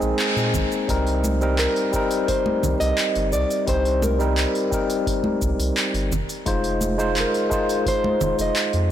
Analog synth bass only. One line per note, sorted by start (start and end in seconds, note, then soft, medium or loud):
0.02 0.13 A#1 loud
0.37 0.56 A#2 medium
0.54 0.66 A#1 medium
0.89 1.67 C2 loud
2.64 2.75 C2 medium
2.81 2.93 C2 loud
3.16 3.35 G1 loud
3.33 3.45 C2 medium
3.68 4.46 C2 loud
5.42 5.54 C2 medium
5.59 5.71 C2 loud
5.94 6.14 G1 loud
6.12 6.24 F1 medium
6.47 7.25 F1 loud
8.22 8.33 F1 medium
8.39 8.51 F1 loud
8.74 8.91 F2 medium